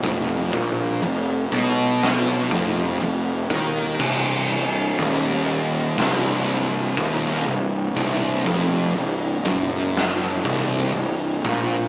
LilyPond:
<<
  \new Staff \with { instrumentName = "Distorted electric guitar" } { \clef bass \time 4/4 \key c \minor \tempo 4 = 60 f,8 bes,8 f,8 ces4 f,8 f,8 ees8 | c,8 c,8 ees,4 c,4 ees,8 c,8 | c,8 f,8 c,8 fis,4 c,8 c,8 bes,8 | }
  \new Staff \with { instrumentName = "Distorted electric guitar" } { \clef bass \time 4/4 \key c \minor f,8 bes,8 f,8 ces4 f,8 f,8 ees8 | c,8 c,8 ees,4 c,4 ees,8 c,8 | c,8 f,8 c,8 fis,4 c,8 c,8 bes,8 | }
  \new Staff \with { instrumentName = "Picked electric bass" } { \clef bass \time 4/4 \key c \minor f,,8 bes,,8 f,,8 ces,4 f,,8 f,,8 ees,8 | c,,8 c,,8 ees,,4 c,,4 ees,,8 c,,8 | c,,8 f,,8 c,,8 fis,,4 c,,8 c,,8 bes,,8 | }
  \new DrumStaff \with { instrumentName = "Drums" } \drummode { \time 4/4 <hho bd>8 bd8 hho8 bd8 <hho sn>8 bd8 hho8 bd8 | <cymc bd>4 <hho bd>4 <hho bd sn>4 <hho bd>16 sn8. | <hho bd>8 bd8 hho8 bd8 <hho sn>8 bd8 hho8 bd8 | }
>>